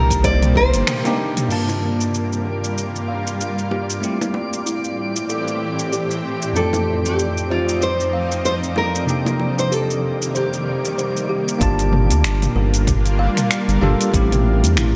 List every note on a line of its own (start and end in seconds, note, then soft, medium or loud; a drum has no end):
0.00 0.75 C2 medium
0.00 1.48 C3 medium
0.00 1.46 D#3 medium
0.00 1.48 G3 medium
0.00 1.01 A#3 medium
0.00 1.48 A#3 medium
0.00 1.02 D4 medium
0.00 1.02 D#4 medium
0.00 1.03 G4 medium
0.00 0.24 A#4 medium
0.10 kick loud
0.10 closed hi-hat soft
0.10 shaker medium
0.24 0.43 C5 medium
0.24 0.57 D5 loud
0.24 kick loud
0.24 closed hi-hat medium
0.24 shaker medium
0.42 closed hi-hat soft
0.42 mid tom medium
0.42 shaker soft
0.56 1.15 C5 loud
0.56 kick medium
0.56 high bongo medium
0.74 0.84 G1 medium
0.74 closed hi-hat soft
0.74 shaker medium
0.87 1.06 A#4 medium
0.87 finger snap loud
0.87 closed hi-hat medium
0.87 mid tom medium
0.87 high tom medium
0.87 shaker medium
1.05 1.47 A#3 medium
1.05 1.47 D4 medium
1.05 1.48 D#4 medium
1.05 1.48 G4 medium
1.05 closed hi-hat soft
1.05 high tom medium
1.05 shaker soft
1.37 closed hi-hat soft
1.37 mid tom medium
1.37 shaker medium
1.48 3.99 G2 medium
1.48 4.00 G2 medium
1.48 4.00 G3 medium
1.48 3.99 A#3 medium
1.48 4.00 A#3 medium
1.48 4.00 D4 medium
1.48 4.00 F4 medium
1.48 1.70 F4 medium
1.48 4.00 F4 medium
1.48 11.62 D5 medium
1.48 11.63 D6 medium
1.48 crash medium
1.48 shaker soft
1.52 4.01 A5 medium
1.69 high bongo medium
1.69 shaker soft
2.01 shaker medium
2.14 shaker soft
2.33 shaker soft
2.45 2.74 A#4 medium
2.64 shaker medium
2.78 shaker soft
2.96 shaker soft
3.08 3.27 F5 medium
3.27 shaker medium
3.41 shaker soft
3.59 shaker soft
3.71 4.01 G4 medium
3.71 high bongo medium
3.90 shaker medium
4.01 6.53 A2 medium
4.01 6.53 E3 medium
4.01 6.51 A3 medium
4.01 6.52 C4 medium
4.01 6.53 C4 medium
4.01 6.53 E4 medium
4.01 6.53 G4 medium
4.01 shaker soft
4.05 6.53 G4 medium
4.21 high bongo medium
4.21 shaker soft
4.34 high bongo medium
4.53 shaker medium
4.66 4.95 E4 medium
4.66 shaker soft
4.84 shaker soft
5.16 shaker medium
5.29 5.49 A4 medium
5.29 shaker soft
5.48 shaker soft
5.79 shaker medium
5.92 6.12 G4 medium
5.92 shaker soft
6.11 shaker soft
6.42 shaker medium
6.53 9.04 F2 medium
6.53 9.06 F2 medium
6.53 9.06 F3 medium
6.53 9.04 A3 medium
6.53 9.05 C4 medium
6.53 9.06 C4 medium
6.53 9.06 D#4 medium
6.53 9.05 D#4 medium
6.53 6.75 F4 medium
6.53 7.07 A4 medium
6.53 shaker soft
6.57 9.06 G4 medium
6.73 high bongo medium
6.73 shaker soft
7.06 7.51 G4 medium
7.06 shaker medium
7.19 shaker soft
7.37 shaker soft
7.50 7.83 F4 medium
7.50 7.79 C5 medium
7.69 shaker medium
7.82 8.44 C5 medium
7.82 shaker soft
8.00 shaker soft
8.13 8.33 F5 medium
8.32 shaker medium
8.45 8.54 C5 medium
8.45 shaker soft
8.64 shaker soft
8.76 9.07 A4 medium
8.76 9.59 A#4 medium
8.76 high bongo medium
8.95 shaker medium
9.06 11.56 C3 medium
9.06 11.58 C3 medium
9.06 11.59 D#3 medium
9.06 11.58 G3 medium
9.06 11.57 A#3 medium
9.06 11.58 A#3 medium
9.06 11.57 D4 medium
9.06 11.58 D#4 medium
9.06 shaker soft
9.10 11.59 G4 medium
9.26 high bongo medium
9.26 shaker soft
9.39 high bongo medium
9.59 9.73 C5 medium
9.59 shaker medium
9.72 10.00 G4 medium
9.72 10.37 A4 medium
9.72 shaker soft
9.90 shaker soft
10.22 shaker medium
10.35 10.95 G4 medium
10.35 10.54 C5 medium
10.35 shaker soft
10.53 shaker soft
10.85 shaker medium
10.98 11.28 C5 medium
10.98 shaker soft
11.17 shaker soft
11.29 11.60 G4 medium
11.48 shaker medium
11.59 12.12 G1 loud
11.59 14.11 G3 medium
11.59 13.78 A#3 medium
11.59 14.11 A#3 medium
11.59 13.78 D4 medium
11.59 14.11 D4 medium
11.59 14.11 F4 medium
11.59 11.80 F4 medium
11.59 13.79 F4 medium
11.59 kick loud
11.59 closed hi-hat medium
11.59 shaker medium
11.63 13.80 A5 medium
11.79 closed hi-hat soft
11.79 shaker soft
11.93 mid tom medium
12.10 12.25 D2 medium
12.10 closed hi-hat soft
12.10 shaker medium
12.24 12.48 G1 loud
12.24 finger snap loud
12.24 closed hi-hat medium
12.24 shaker medium
12.42 closed hi-hat soft
12.42 mid tom medium
12.42 shaker soft
12.55 13.29 G1 medium
12.55 12.85 A#4 medium
12.74 closed hi-hat soft
12.74 shaker medium
12.87 kick loud
12.87 closed hi-hat medium
12.87 mid tom medium
12.87 shaker medium
13.06 closed hi-hat soft
13.06 shaker soft
13.19 13.38 F5 medium
13.37 finger snap soft
13.37 closed hi-hat soft
13.37 mid tom medium
13.37 shaker medium
13.51 finger snap loud
13.51 closed hi-hat medium
13.51 shaker medium
13.68 13.78 G1 medium
13.68 closed hi-hat soft
13.68 shaker soft
13.81 13.95 G1 loud
13.81 14.10 A#3 medium
13.81 14.10 D4 medium
13.81 14.11 F4 medium
13.81 14.12 G4 medium
13.81 14.11 A4 medium
13.81 mid tom medium
14.01 closed hi-hat soft
14.01 shaker medium
14.12 14.65 A1 loud
14.12 14.96 A3 medium
14.12 14.96 C4 medium
14.12 14.96 E4 medium
14.12 14.96 G4 medium
14.12 kick loud
14.12 closed hi-hat medium
14.12 shaker medium
14.16 14.96 G4 medium
14.32 closed hi-hat soft
14.32 mid tom medium
14.32 shaker soft
14.63 14.78 E2 medium
14.63 closed hi-hat soft
14.63 shaker medium
14.76 14.96 A1 medium
14.76 14.96 E4 medium
14.76 finger snap loud
14.76 closed hi-hat medium
14.76 mid tom medium
14.76 shaker medium